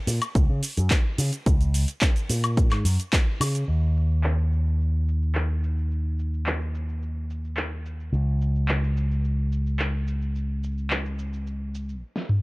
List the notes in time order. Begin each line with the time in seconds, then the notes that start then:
0.07 A#2, open hi-hat, cabasa
0.22 closed hi-hat, cabasa, high woodblock
0.35 C#2, kick, closed hi-hat, cabasa
0.49 C#3
0.63 open hi-hat, cabasa
0.77 F#2, closed hi-hat, cabasa
0.90 kick, clap, closed hi-hat, cabasa
1.18 C#3, open hi-hat, cabasa
1.33 closed hi-hat, cabasa
1.46 C#2, kick, closed hi-hat, cabasa
1.61 closed hi-hat, cabasa
1.74 open hi-hat, cabasa
1.88 closed hi-hat, cabasa
2.01 kick, clap, closed hi-hat, cabasa
2.16 closed hi-hat, cabasa
2.30 A#2, open hi-hat, cabasa
2.44 closed hi-hat, cabasa, high woodblock
2.57 kick, closed hi-hat, cabasa
2.71 G#2, clap, closed hi-hat, high woodblock
2.85 F#2, open hi-hat, cabasa
3.00 closed hi-hat, cabasa
3.13 kick, clap, closed hi-hat, cabasa
3.40 C#3, open hi-hat, cabasa, high woodblock
3.55 closed hi-hat, cabasa
3.68 D#2, cabasa
3.97 cabasa
4.11 cabasa
4.24 clap, cabasa
4.39 cabasa
4.53 cabasa
4.67 cabasa
4.80 cabasa
5.08 cabasa
5.22 cabasa
5.35 clap, cabasa
5.64 cabasa
5.78 cabasa
5.91 cabasa
6.19 cabasa
6.34 cabasa
6.46 clap, cabasa
6.61 cabasa
6.75 cabasa
6.89 cabasa
7.02 cabasa
7.30 cabasa
7.45 cabasa
7.57 clap, cabasa
7.86 cabasa
8.00 cabasa
8.13 C#2, cabasa
8.41 cabasa
8.56 cabasa
8.68 clap, cabasa
8.84 cabasa
8.97 cabasa
9.11 cabasa
9.25 cabasa
9.52 cabasa
9.67 cabasa
9.79 clap, cabasa
10.08 cabasa
10.22 cabasa
10.36 cabasa
10.63 cabasa
10.78 cabasa
10.90 clap, cabasa
11.06 cabasa
11.19 cabasa
11.33 cabasa
11.47 cabasa
11.75 cabasa
11.89 cabasa
12.16 snare
12.29 mid tom